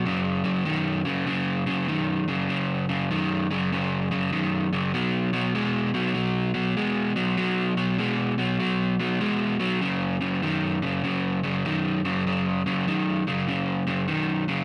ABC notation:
X:1
M:4/4
L:1/8
Q:"Swing" 1/4=98
K:B
V:1 name="Overdriven electric guitar" clef=bass
[F,,C,] [F,,C,] [F,,D,] [F,,C,] [F,,C,] [F,,C,] [F,,D,] [F,,C,] | [F,,C,] [F,,C,] [F,,D,] [F,,C,] [F,,C,] [F,,C,] [F,,D,] [F,,C,] | [B,,F,] [B,,F,] [B,,G,] [B,,F,] [B,,F,] [B,,F,] [B,,G,] [B,,F,] | [B,,F,] [B,,F,] [B,,G,] [B,,F,] [B,,F,] [B,,F,] [B,,G,] [B,,F,] |
[F,,C,] [F,,C,] [F,,D,] [F,,C,] [F,,C,] [F,,C,] [F,,D,] [F,,C,] | [F,,C,] [F,,C,] [F,,D,] [F,,C,] [F,,C,] [F,,C,] [F,,D,] [F,,C,] |]